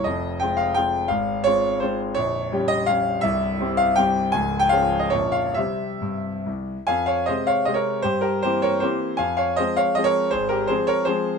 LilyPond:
<<
  \new Staff \with { instrumentName = "Grand piano" } { \time 3/4 \key f \minor \tempo 4 = 162 ees''4 g''8 f''8 g''4 | f''4 des''4 c''8 r8 | des''4. ees''8 f''4 | e''4. f''8 g''4 |
aes''8. g''16 f''8. ees''16 des''8 f''8 | e''2 r4 | <f'' aes''>8 <des'' f''>8 <c'' ees''>8 <des'' f''>8 ees''16 <bes' des''>8. | <g' c''>8 <g' bes'>8 <g' c''>8 <bes' des''>8 <g' c''>4 |
<f'' aes''>8 <des'' f''>8 <c'' ees''>8 <des'' f''>8 ees''16 <bes' des''>8. | <aes' c''>8 <g' bes'>8 <aes' c''>8 <bes' des''>8 <aes' c''>4 | }
  \new Staff \with { instrumentName = "Grand piano" } { \clef bass \time 3/4 \key f \minor <f,, f,>4 <aes c' f'>4 <aes c' f'>4 | <aes,, aes,>4 <aes c' f'>4 <aes c' f'>4 | <bes,,, bes,,>4 <g des' g'>4 <g des' g'>4 | <c,, c,>4 <g c' g'>4 <g c' g'>4 |
<des,, des,>4 <f aes des'>4 <bes,,, bes,, f bes des'>4 | <c g c'>4 g,4 c,4 | f,4 <c aes c'>4 <c aes c'>4 | g,4 <e bes c'>4 <e bes c'>4 |
f,4 <f aes c'>4 <f aes c'>4 | aes,,4 <f aes c'>4 <f aes c'>4 | }
>>